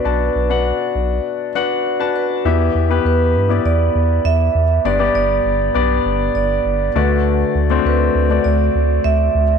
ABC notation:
X:1
M:4/4
L:1/16
Q:1/4=100
K:Em
V:1 name="Vibraphone"
B6 z4 d4 B2- | B2 z2 B4 d4 e4 | d2 d8 d4 B2- | B2 z2 B4 d4 e4 |]
V:2 name="Grand piano"
[DFBa]3 [DFBf]6- [DFBf] [DFBf]3 [DFBa]3 | [B,EGe]3 [B,EGB]4 [B,EGd]8 z | [B,DGd] [B,DGd]4- [B,DGd] [B,DGd]8 [A,DFd]2- | [A,DFd]3 [A,CDF]4 [A,DFd]8 z |]
V:3 name="Grand piano" clef=bass
B,,4 z12 | E,6 z8 z2 | G,,6 z8 D,2- | D,4 z12 |]
V:4 name="Analog synth bass" clef=bass
B,,,2 B,,,3 z B,,,2 z8 | E,,2 E,,2 E,,2 G,,2 E,,2 E,,2 E,,2 E,,2 | G,,,2 G,,,2 G,,,2 B,,,2 G,,,2 G,,,2 G,,,2 D,,2- | D,,2 D,,2 D,,2 D,,2 D,,2 D,,2 D,,2 D,,2 |]